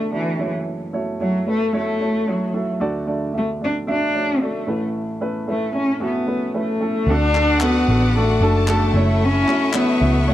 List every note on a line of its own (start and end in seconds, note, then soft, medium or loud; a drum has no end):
0.00 0.36 D2 medium
0.00 0.36 D3 medium
0.00 0.11 A3 medium
0.00 0.11 D4 medium
0.00 0.12 F#4 medium
0.00 0.41 B4 medium
0.00 0.12 D5 medium
0.11 0.51 E3 medium
0.11 0.37 A3 medium
0.11 0.37 D4 medium
0.11 0.37 F#4 medium
0.11 0.38 D5 medium
0.39 2.50 F#1 soft
0.39 2.50 F#2 soft
0.39 0.89 A3 medium
0.39 0.90 E4 medium
0.39 0.90 F#4 medium
0.39 0.90 C#5 medium
0.93 1.18 A3 medium
0.93 1.18 E4 medium
0.93 1.18 F#4 medium
0.93 1.19 C#5 medium
1.20 1.45 F#3 medium
1.20 1.45 A3 medium
1.20 1.45 E4 medium
1.20 1.45 F#4 medium
1.20 1.46 C#5 medium
1.46 1.71 A3 medium
1.46 1.73 A3 medium
1.46 1.72 E4 soft
1.46 1.72 F#4 soft
1.46 1.72 B4 medium
1.73 1.98 A3 medium
1.73 2.31 A3 medium
1.73 1.98 E4 medium
1.73 1.98 F#4 medium
1.73 1.99 C#5 medium
2.00 2.25 A3 medium
2.00 2.25 E4 medium
2.00 2.26 F#4 medium
2.00 2.26 C#5 medium
2.27 2.69 F#3 medium
2.27 2.52 A3 medium
2.27 2.52 E4 medium
2.27 2.52 F#4 medium
2.27 2.53 C#5 medium
2.53 2.78 A3 medium
2.53 2.79 E4 medium
2.53 2.79 F#4 medium
2.53 2.79 A4 medium
2.80 4.64 D2 medium
2.80 4.64 D3 medium
2.80 3.05 A3 medium
2.80 3.05 D4 medium
2.80 3.05 F#4 medium
2.80 3.06 D5 medium
3.06 3.31 A3 medium
3.06 3.32 D4 medium
3.06 3.32 F#4 medium
3.06 3.33 D5 medium
3.33 3.59 A3 medium
3.33 3.59 D4 medium
3.33 3.59 F#4 medium
3.33 3.59 E5 medium
3.38 3.49 A3 medium
3.61 3.86 A3 medium
3.61 3.86 D4 medium
3.61 3.76 D4 medium
3.61 3.86 F#4 soft
3.61 3.86 D5 medium
3.87 4.13 A3 medium
3.87 4.13 D4 medium
3.87 4.44 D4 medium
3.87 4.13 F#4 medium
3.87 4.13 E5 medium
4.14 4.39 A3 medium
4.14 4.40 D4 medium
4.14 4.40 F#4 medium
4.14 4.40 C#5 medium
4.41 4.65 A3 medium
4.41 4.82 A3 medium
4.41 4.66 D4 medium
4.41 4.67 F#4 medium
4.41 4.67 D5 medium
4.67 6.78 A1 medium
4.67 6.78 A2 medium
4.67 5.18 A3 medium
4.67 5.18 C#4 medium
4.67 5.18 E4 medium
4.67 5.18 B4 medium
5.21 5.46 A3 medium
5.21 5.46 C#4 medium
5.21 5.47 E4 medium
5.21 5.47 B4 medium
5.47 5.73 A3 medium
5.47 5.74 A3 medium
5.47 5.72 C#4 medium
5.47 5.73 E4 medium
5.47 5.73 B4 medium
5.74 5.99 A3 medium
5.74 5.99 C#4 medium
5.74 6.00 C#4 medium
5.74 5.99 E4 soft
5.74 6.00 C#5 medium
6.00 6.25 A3 medium
6.00 6.25 C#4 medium
6.00 6.25 E4 medium
6.00 6.26 F#4 medium
6.04 6.53 B3 medium
6.26 6.53 A3 medium
6.26 6.53 C#4 medium
6.26 6.53 E4 medium
6.26 6.53 B4 medium
6.54 6.79 A3 medium
6.54 6.79 C#4 medium
6.54 6.80 E4 medium
6.54 6.80 B4 medium
6.59 7.12 A3 medium
6.81 7.06 A3 medium
6.81 7.06 C#4 medium
6.81 7.07 E4 medium
6.81 7.07 A4 medium
7.07 7.84 D2 medium
7.07 7.85 D3 medium
7.07 7.32 D4 medium
7.07 8.39 F#4 medium
7.07 7.33 F#4 medium
7.07 10.34 A4 medium
7.07 7.34 A4 medium
7.07 8.94 D5 medium
7.07 10.34 F#5 medium
7.07 8.40 F#5 medium
7.07 8.93 D6 medium
7.11 7.63 D4 loud
7.34 7.59 D4 medium
7.34 7.60 F#4 medium
7.34 7.60 A4 medium
7.34 clap medium
7.61 7.87 D4 medium
7.61 7.87 F#4 medium
7.61 7.87 A4 medium
7.61 clap medium
7.65 8.20 B3 medium
7.88 8.38 A1 medium
7.88 8.13 D4 medium
7.88 8.14 F#4 medium
7.88 8.14 A4 medium
8.15 8.70 A3 medium
8.15 8.40 D4 medium
8.15 8.40 F#4 medium
8.15 8.40 A4 medium
8.41 8.91 F#1 medium
8.41 8.66 D4 loud
8.41 8.66 F#4 medium
8.41 8.67 A4 loud
8.41 8.95 A4 medium
8.41 8.94 A5 medium
8.68 9.27 A3 medium
8.68 8.93 D4 medium
8.68 8.93 F#4 medium
8.68 8.94 A4 loud
8.68 clap medium
8.94 9.44 F#1 medium
8.94 9.45 A3 medium
8.94 9.45 C#4 medium
8.94 10.26 E4 medium
8.94 9.46 E4 medium
8.94 9.46 F#4 medium
8.94 9.46 C#5 medium
8.94 10.26 E5 medium
8.94 10.34 E5 medium
8.94 10.34 C#6 medium
9.25 9.77 C#4 loud
9.47 9.72 A3 medium
9.47 9.72 C#4 medium
9.47 9.73 E4 medium
9.47 9.73 F#4 medium
9.47 9.73 C#5 medium
9.47 clap medium
9.73 9.99 A3 medium
9.73 9.99 C#4 medium
9.73 10.00 E4 medium
9.73 10.00 F#4 medium
9.73 10.00 C#5 medium
9.73 clap medium
9.78 10.32 B3 medium
10.01 10.34 C#2 medium
10.01 10.26 A3 medium
10.01 10.26 C#4 medium
10.01 10.27 E4 medium
10.01 10.27 F#4 medium
10.01 10.27 E5 medium
10.27 10.34 A3 medium
10.27 10.34 C#4 medium
10.27 10.34 E4 medium
10.27 10.34 F#4 medium
10.27 10.34 C#5 medium
10.27 10.34 F#5 medium